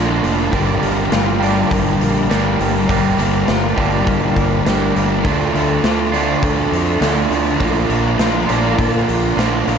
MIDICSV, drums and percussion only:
0, 0, Header, 1, 2, 480
1, 0, Start_track
1, 0, Key_signature, -2, "minor"
1, 0, Tempo, 589971
1, 428, Time_signature, 4, 2, 24, 8
1, 7957, End_track
2, 0, Start_track
2, 0, Title_t, "Drums"
2, 192, Note_on_c, 9, 46, 51
2, 274, Note_off_c, 9, 46, 0
2, 431, Note_on_c, 9, 36, 98
2, 432, Note_on_c, 9, 46, 63
2, 512, Note_off_c, 9, 36, 0
2, 513, Note_off_c, 9, 46, 0
2, 671, Note_on_c, 9, 46, 47
2, 752, Note_off_c, 9, 46, 0
2, 910, Note_on_c, 9, 46, 63
2, 913, Note_on_c, 9, 38, 100
2, 991, Note_off_c, 9, 46, 0
2, 995, Note_off_c, 9, 38, 0
2, 1158, Note_on_c, 9, 46, 52
2, 1240, Note_off_c, 9, 46, 0
2, 1394, Note_on_c, 9, 36, 91
2, 1396, Note_on_c, 9, 46, 63
2, 1475, Note_off_c, 9, 36, 0
2, 1477, Note_off_c, 9, 46, 0
2, 1637, Note_on_c, 9, 46, 47
2, 1718, Note_off_c, 9, 46, 0
2, 1878, Note_on_c, 9, 46, 65
2, 1881, Note_on_c, 9, 38, 102
2, 1959, Note_off_c, 9, 46, 0
2, 1963, Note_off_c, 9, 38, 0
2, 2118, Note_on_c, 9, 46, 49
2, 2200, Note_off_c, 9, 46, 0
2, 2353, Note_on_c, 9, 36, 101
2, 2353, Note_on_c, 9, 46, 63
2, 2435, Note_off_c, 9, 36, 0
2, 2435, Note_off_c, 9, 46, 0
2, 2595, Note_on_c, 9, 46, 47
2, 2677, Note_off_c, 9, 46, 0
2, 2829, Note_on_c, 9, 46, 57
2, 2832, Note_on_c, 9, 38, 99
2, 2910, Note_off_c, 9, 46, 0
2, 2914, Note_off_c, 9, 38, 0
2, 3073, Note_on_c, 9, 36, 74
2, 3073, Note_on_c, 9, 46, 47
2, 3154, Note_off_c, 9, 36, 0
2, 3154, Note_off_c, 9, 46, 0
2, 3312, Note_on_c, 9, 36, 97
2, 3312, Note_on_c, 9, 46, 53
2, 3394, Note_off_c, 9, 36, 0
2, 3394, Note_off_c, 9, 46, 0
2, 3549, Note_on_c, 9, 46, 44
2, 3551, Note_on_c, 9, 36, 73
2, 3630, Note_off_c, 9, 46, 0
2, 3633, Note_off_c, 9, 36, 0
2, 3792, Note_on_c, 9, 46, 59
2, 3795, Note_on_c, 9, 38, 100
2, 3874, Note_off_c, 9, 46, 0
2, 3877, Note_off_c, 9, 38, 0
2, 4036, Note_on_c, 9, 46, 45
2, 4117, Note_off_c, 9, 46, 0
2, 4270, Note_on_c, 9, 36, 100
2, 4272, Note_on_c, 9, 46, 61
2, 4351, Note_off_c, 9, 36, 0
2, 4353, Note_off_c, 9, 46, 0
2, 4517, Note_on_c, 9, 46, 44
2, 4599, Note_off_c, 9, 46, 0
2, 4749, Note_on_c, 9, 46, 62
2, 4752, Note_on_c, 9, 38, 99
2, 4830, Note_off_c, 9, 46, 0
2, 4833, Note_off_c, 9, 38, 0
2, 4990, Note_on_c, 9, 46, 51
2, 5071, Note_off_c, 9, 46, 0
2, 5230, Note_on_c, 9, 36, 102
2, 5230, Note_on_c, 9, 46, 61
2, 5311, Note_off_c, 9, 36, 0
2, 5312, Note_off_c, 9, 46, 0
2, 5477, Note_on_c, 9, 46, 47
2, 5558, Note_off_c, 9, 46, 0
2, 5709, Note_on_c, 9, 46, 69
2, 5713, Note_on_c, 9, 38, 101
2, 5791, Note_off_c, 9, 46, 0
2, 5794, Note_off_c, 9, 38, 0
2, 5951, Note_on_c, 9, 46, 50
2, 6032, Note_off_c, 9, 46, 0
2, 6183, Note_on_c, 9, 46, 64
2, 6187, Note_on_c, 9, 36, 107
2, 6265, Note_off_c, 9, 46, 0
2, 6269, Note_off_c, 9, 36, 0
2, 6425, Note_on_c, 9, 46, 48
2, 6507, Note_off_c, 9, 46, 0
2, 6664, Note_on_c, 9, 46, 62
2, 6667, Note_on_c, 9, 38, 97
2, 6745, Note_off_c, 9, 46, 0
2, 6748, Note_off_c, 9, 38, 0
2, 6905, Note_on_c, 9, 46, 52
2, 6987, Note_off_c, 9, 46, 0
2, 7146, Note_on_c, 9, 46, 56
2, 7148, Note_on_c, 9, 36, 96
2, 7227, Note_off_c, 9, 46, 0
2, 7229, Note_off_c, 9, 36, 0
2, 7393, Note_on_c, 9, 46, 43
2, 7474, Note_off_c, 9, 46, 0
2, 7636, Note_on_c, 9, 46, 59
2, 7639, Note_on_c, 9, 38, 95
2, 7717, Note_off_c, 9, 46, 0
2, 7720, Note_off_c, 9, 38, 0
2, 7872, Note_on_c, 9, 46, 46
2, 7953, Note_off_c, 9, 46, 0
2, 7957, End_track
0, 0, End_of_file